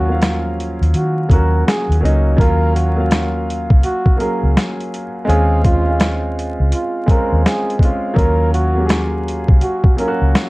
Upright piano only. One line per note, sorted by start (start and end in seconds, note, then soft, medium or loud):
0.00 0.14 F#3 medium
0.00 0.09 A#3 medium
0.00 0.10 C#4 medium
0.00 2.40 F4 medium
0.07 0.13 F3 medium
0.07 0.99 A#3 medium
0.07 0.99 C#4 medium
0.12 1.01 F#3 medium
0.12 1.00 F5 medium
1.29 1.88 F#3 medium
1.29 1.89 A#3 medium
1.29 1.89 C#4 medium
1.33 1.90 F#4 medium
2.01 2.31 F#3 medium
2.01 2.32 A#3 medium
2.01 2.32 C#4 medium
2.05 2.33 D#4 medium
2.37 2.79 F#3 medium
2.37 2.80 A#3 medium
2.37 2.81 C#4 medium
2.41 2.81 F4 loud
2.96 3.87 F#3 medium
2.96 3.87 A#3 medium
2.96 3.88 C#4 medium
3.00 3.89 F5 medium
4.17 5.01 F#3 medium
4.17 5.01 A#3 medium
4.17 5.02 C#4 medium
4.21 5.03 G#4 medium
5.25 5.68 G#3 loud
5.25 5.68 C4 medium
5.25 5.69 C#4 medium
5.29 5.70 F4 loud
5.86 6.77 G#3 medium
5.86 6.77 C4 medium
5.86 6.78 C#4 medium
5.91 6.79 F4 medium
7.06 7.66 G#3 medium
7.06 7.67 C4 medium
7.06 7.67 C#4 medium
7.11 7.68 F4 medium
7.80 8.10 G#3 medium
7.80 8.11 C4 medium
7.80 8.11 C#4 medium
7.85 8.12 F4 medium
8.14 8.57 F#3 medium
8.14 8.57 A#3 medium
8.14 8.58 C#4 medium
8.18 8.59 F4 medium
8.75 9.65 F#3 medium
8.75 9.66 A#3 medium
8.75 9.67 C#4 medium
8.80 8.83 G4 medium
8.86 9.71 G#4 medium
9.97 10.49 F#3 medium
9.97 10.49 A#3 medium
9.97 10.49 C#4 medium
10.01 10.08 F4 medium
10.08 10.49 F#4 medium